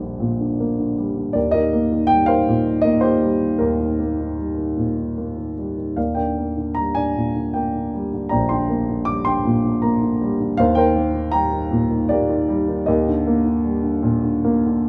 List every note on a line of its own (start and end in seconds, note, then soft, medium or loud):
0.00 1.32 A#1 medium
0.00 0.17 A#2 soft
0.00 0.40 D3 soft
0.00 0.98 G3 medium
0.00 0.60 A#3 medium
0.00 1.35 G4 medium
0.00 1.35 A#4 medium
0.00 0.94 D5 medium
0.00 1.38 D#5 medium
0.00 1.38 G5 medium
0.20 1.32 A#2 medium
0.40 0.78 D3 soft
0.60 1.34 A#3 medium
0.79 1.15 D3 soft
0.98 1.34 G3 medium
1.17 1.35 D3 soft
1.33 3.56 D#2 medium
1.33 1.52 G4 medium
1.33 1.52 A#4 medium
1.33 1.52 D5 medium
1.51 1.91 D#3 medium
1.51 2.62 G4 medium
1.51 2.26 A#4 medium
1.51 2.10 D#5 loud
1.73 2.83 A#3 medium
1.92 2.27 D#3 medium
2.07 3.20 G3 medium
2.07 2.28 G5 loud
2.26 2.65 D#3 medium
2.26 3.37 A#4 medium
2.26 2.99 C5 medium
2.26 2.85 F5 loud
2.48 4.73 A#2 medium
2.66 3.02 D#3 soft
2.82 3.98 A#3 medium
2.82 3.00 D#5 loud
3.01 3.41 D#3 soft
3.01 3.59 G4 medium
3.01 3.61 C5 medium
3.22 4.36 G3 medium
3.42 3.79 D#3 soft
3.58 5.93 D#2 medium
3.58 5.53 G4 medium
3.58 5.52 A#4 medium
3.80 4.18 D#3 medium
3.99 5.16 A#3 medium
4.20 4.56 D#3 medium
4.38 5.56 G3 soft
4.58 4.96 D#3 soft
4.77 5.94 A#2 medium
4.98 5.36 D#3 soft
5.18 5.96 A#3 soft
5.37 5.76 D#3 soft
5.58 5.97 G3 medium
5.78 5.97 D#3 soft
5.96 8.28 D#2 medium
5.96 6.15 A#4 soft
5.96 6.15 D5 soft
5.96 6.18 F5 medium
6.15 6.56 D3 soft
6.15 7.32 A#4 soft
6.15 6.95 D5 soft
6.15 6.78 G5 medium
6.38 7.54 A#3 soft
6.57 6.96 D3 soft
6.75 7.93 G3 soft
6.75 6.96 A#5 medium
6.95 7.34 D3 soft
6.95 8.09 D5 medium
6.95 7.56 G#5 medium
7.17 9.41 A#2 medium
7.36 7.74 D3 soft
7.54 8.68 A#3 medium
7.54 7.90 G5 medium
7.75 8.12 D3 soft
7.94 9.06 G3 medium
8.13 8.50 D3 medium
8.29 10.55 A#1 medium
8.29 9.40 D5 medium
8.29 8.49 G5 medium
8.29 8.50 A#5 medium
8.49 8.88 D3 medium
8.49 9.25 G5 medium
8.49 9.08 C6 medium
8.69 9.81 A#3 medium
8.89 9.24 D3 soft
9.05 10.20 G3 soft
9.05 9.25 D6 loud
9.25 9.63 D3 soft
9.25 10.37 G5 medium
9.25 9.84 C6 loud
9.45 10.56 A#2 medium
9.65 10.01 D3 medium
9.82 10.56 A#3 medium
9.82 10.18 A#5 medium
10.02 10.39 D3 medium
10.21 10.58 G3 medium
10.40 10.58 D3 medium
10.57 12.84 D#2 medium
10.57 10.76 A#4 medium
10.57 10.76 C5 medium
10.57 10.77 F5 loud
10.75 11.12 D#3 medium
10.75 11.86 A#4 medium
10.75 11.86 C5 medium
10.75 11.32 G5 loud
10.96 12.09 A#3 medium
11.14 11.51 D#3 medium
11.32 12.47 G3 medium
11.32 12.45 G5 medium
11.32 12.11 A#5 loud
11.53 11.89 D#3 medium
11.71 12.85 A#2 medium
11.91 12.28 D#3 medium
12.09 12.86 A#3 medium
12.09 12.84 G4 medium
12.09 12.84 A#4 medium
12.09 12.90 D5 medium
12.29 12.67 D#3 medium
12.48 12.87 G3 medium
12.68 12.87 D#3 medium
12.86 14.89 D#2 medium
12.86 14.42 G4 medium
12.86 14.42 A#4 medium
12.86 14.41 D#5 medium
13.08 13.44 D3 medium
13.27 14.43 A#3 medium
13.46 13.82 D3 medium
13.65 14.86 G3 medium
13.83 14.21 D3 medium
14.03 14.89 A#2 medium
14.23 14.65 D3 medium
14.44 14.89 A#3 medium
14.66 14.89 D3 medium